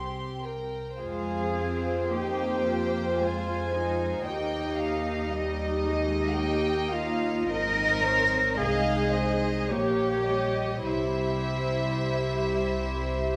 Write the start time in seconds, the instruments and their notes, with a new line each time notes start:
Already playing: double bass section C2, cello section C3, viola section C4, violin section G4 C6
0.42 violin section A#4 G5
0.98 double bass section F2, viola section G#3 F4, cello section G#4, violin section C5 F5
1.57 viola section C4
2.11 viola section A#3 D#4, cello section G4, violin section C5 G5
2.67 viola section F4
3.19 viola section G#3, cello section F4, violin section G#5
3.73 cello section D#4
4.24 double bass section D#2, viola section A#3 G4, violin section D#5 G5
4.77 violin section F5
5.30 viola section G3 G4, violin section D#5
5.85 viola section G#3
6.35 viola section A#3 G4, violin section G5
6.92 viola section F4, violin section F5
7.49 double bass section G#1, viola section C4 D#4, cello section A#4, violin section D#5
8.02 violin section C5 C#5
8.56 double bass section C2, viola section G#3 D#4, cello section G#4, violin section D#5 F5
9.12 violin section C5 D#5
9.69 double bass section A#1, viola section A#3 G4, cello section G4, violin section C#5
10.27 viola section G3, violin section D#5
10.85 double bass section C2, viola section G3 G4, cello section E4, violin section C5 E5